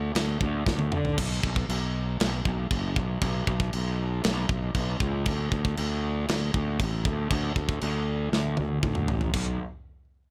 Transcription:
Already playing: D2
0.15 D2, snare, china
0.41 D2, kick
0.66 D2, kick, snare
0.79 high tom
0.92 D3, mid tom
1.05 floor tom
1.18 B1, kick, crash, china
1.43 B1, kick
1.56 kick
1.69 B1, china
2.20 B1, snare, china
2.45 B1, kick
2.71 F#1, kick, china
2.96 B1, kick
3.22 B1, kick, china
3.47 B1, kick
3.60 kick
3.73 B1, china
4.24 B1, snare, china
4.49 B1, kick
4.74 B1, kick, china
5.00 C#2, kick
5.25 D2, kick, china
5.52 D2, kick
5.65 kick
5.77 D2, china
6.28 D2, snare, china
6.54 D2, kick
6.80 A1, kick, china
7.05 D2, kick
7.31 D2, kick, china
7.56 D2, kick
7.69 kick
7.81 D2, china
8.32 D2, snare
8.57 D2, high tom
8.83 D2, kick, mid tom
8.95 mid tom
9.08 A1, floor tom
9.21 floor tom
9.34 B1, kick, crash

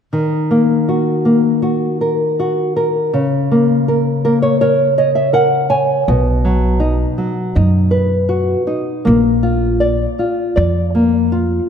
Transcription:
0.13 D#3
0.51 A#3
0.89 F#4
1.25 A#3
1.62 F#4
2.01 A#4
2.40 F#4
2.76 A#4
3.14 C#3
3.51 A#3
3.88 A#4
4.25 A#3 A#4
4.42 C#5
4.61 A#4 C#5
4.98 C#5 D#5
5.15 E5
5.33 A#4 F#5
5.70 C#5 G#5
6.08 B1 B2
6.45 F#3
6.80 D#4
7.18 F#3
7.55 F#2 D#4
7.91 B4
8.29 F#4
8.67 D#4
9.05 A#1 A#3
9.43 F4
9.80 D5
10.19 F4
10.56 F2 D5
10.95 A#3
11.32 F4

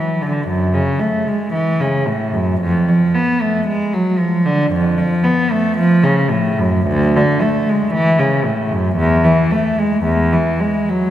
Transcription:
Already playing: E3
0.21 D3
0.48 F#2
0.74 C#3
0.99 A3
1.27 G#3
1.53 E3
1.80 C#3
2.07 A2
2.33 F#2
2.60 F2
2.89 F3
3.15 B3
3.41 A3
3.67 G#3
3.93 F#3
4.18 F3
4.45 D3
4.72 F2
4.98 F3
5.24 B3
5.51 A3
5.78 F3
6.03 C#3
6.31 A2
6.58 F#2
6.87 D2
7.16 D3
7.42 A3
7.69 G#3
7.93 E3
8.19 C#3
8.45 A2
8.71 F#2
8.96 E2
9.24 E3
9.51 A3
9.78 G#3
10.03 E2
10.32 E3
10.60 G#3
10.89 F#3

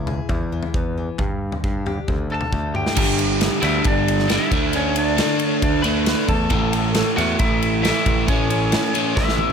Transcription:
Already playing: C#2 E2 E4
0.07 G#4, floor tom, mid tom
0.29 E2 E4, kick, floor tom
0.52 E3
0.63 floor tom
0.74 E2 B3, kick
0.98 E3
1.18 G2, kick, floor tom
1.52 floor tom
1.64 G2 D4, kick
1.86 G4, floor tom
2.08 D2 D3, kick, floor tom
2.30 D3 A4
2.34 A5
2.41 floor tom, mid tom
2.52 D2 A3, kick
2.74 D3 G4 G5, mid tom
2.86 snare
2.96 G1 G2 D3 G3, kick, crash
3.19 ride
3.41 snare, ride
3.61 D2 D3 G3 E4 E5, snare, ride
3.65 G2
3.84 G1 D4 D5, kick, ride
4.08 ride
4.19 snare
4.27 G2 D3 E4, snare, ride
4.31 G3 E5
4.51 D2 D3 A3 D4, kick, ride
4.73 C#4 C#5, ride
4.96 D4 D5, ride
5.17 D3 A3 D4, snare, ride
5.39 ride
5.46 C#5
5.62 D2 D4 D5, kick, ride
5.82 A3 D4 B4 B5, ride
5.87 D3
6.06 snare, ride
6.28 E2 A4 A5, kick, ride
6.50 A1 A2 E3 A3, kick, ride
6.73 ride
6.95 snare, ride
7.16 E2 A2 E3 A3 F#4 F#5, snare, ride
7.39 A1 E4 E5, kick, ride
7.62 ride
7.82 A2 E3 A3 E4 E5, snare, ride
8.06 A1, kick, ride
8.27 A2 E3 A3 C#4 C#5, kick, ride
8.50 C#4 C#5, ride
8.72 snare, ride
8.94 A2 E3 A3, ride
9.16 A1 E4 E5, kick, snare
9.29 snare
9.37 E4 E5, high tom

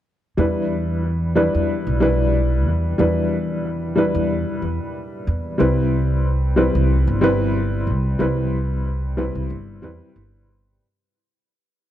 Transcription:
0.37 E2 G3 D4 E4 B4
1.35 G3 D4 E4 B4
1.54 E2
1.87 B1
2.00 G3 D4 E4 B4
2.66 E2
2.98 E2 G3 D4 E4 B4
3.96 G3 D4 E4 B4
4.15 E2
4.62 E2
5.27 E2
5.58 C2 G3 C4 E4 B4
6.56 G3 C4 E4 B4
6.75 C2
7.07 G1
7.21 G3 C4 E4 B4
7.87 C2
8.19 C2 G3 C4 E4 B4
9.17 G3 C4 E4 B4
9.35 C2
9.50 G1
9.82 E2 G3 C4 E4 B4
10.16 G1

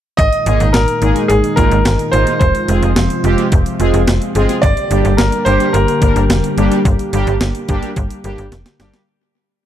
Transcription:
0.17 G#1 A#2 D#3 G#3 D#4 D#5, kick, closed hi-hat
0.33 closed hi-hat
0.46 G#1 G#3 A#3 D#4 G#4, closed hi-hat
0.60 G#1, closed hi-hat
0.73 G#1 A#4, snare, closed hi-hat
0.88 closed hi-hat
1.02 G#1 G#3 A#3 D#4 G#4, closed hi-hat
1.16 closed hi-hat
1.28 G#1 G#4, closed hi-hat
1.44 closed hi-hat
1.56 G#1 G#3 A#3 D#4 F4 A#4, kick, closed hi-hat
1.71 G#1, closed hi-hat
1.85 G1, snare, closed hi-hat
1.99 closed hi-hat
2.12 G#1 G#3 A#3 D#4 F4 C5, closed hi-hat
2.27 closed hi-hat
2.39 F1 C3 F3 F4 C5, kick, closed hi-hat
2.55 closed hi-hat
2.68 F1 G#3 C4 F4 G#4, closed hi-hat
2.82 F1, closed hi-hat
2.96 F1, snare, closed hi-hat
3.10 closed hi-hat
3.24 F1 G#3 C4 F4 G4, closed hi-hat
3.38 closed hi-hat
3.52 F1, kick, closed hi-hat
3.66 closed hi-hat
3.80 F1 G#3 C4 F4 G#4, closed hi-hat
3.94 F1, closed hi-hat
4.07 F1, snare, closed hi-hat
4.22 closed hi-hat
4.35 G1 G#3 C4 F4 G#4, closed hi-hat
4.49 closed hi-hat
4.62 G1 D3 G3 A#3 G4 D5, kick, closed hi-hat
4.77 closed hi-hat
4.91 G1 G3 A#3 D4 G4, closed hi-hat
5.05 G1, closed hi-hat
5.17 G1 A#4, snare, closed hi-hat
5.32 closed hi-hat
5.45 G1 G3 A#3 D4 G4 C5, closed hi-hat
5.60 closed hi-hat
5.73 G1 A#4, closed hi-hat
5.88 closed hi-hat
6.02 G1 G3 A#3 D4 A#4, kick, closed hi-hat
6.16 G1, closed hi-hat
6.30 F1, snare, closed hi-hat
6.44 closed hi-hat
6.58 G1 G3 A#3 D4 G4, closed hi-hat
6.72 closed hi-hat
6.85 G1, kick, closed hi-hat
6.99 closed hi-hat
7.13 G1 G3 A#3 D4 G4, closed hi-hat
7.27 G1, closed hi-hat
7.41 G1, snare, closed hi-hat
7.55 closed hi-hat
7.69 G1 G3 A#3 D4 G4, kick, closed hi-hat
7.83 closed hi-hat
7.96 G1, kick, closed hi-hat
8.11 closed hi-hat
8.24 G1 G3 A#3 D4 G4, closed hi-hat
8.38 G1, closed hi-hat
8.52 F1, snare, closed hi-hat
8.66 snare, closed hi-hat
8.80 G1 G3 A#3 D4 G4, snare, closed hi-hat
8.94 snare, closed hi-hat

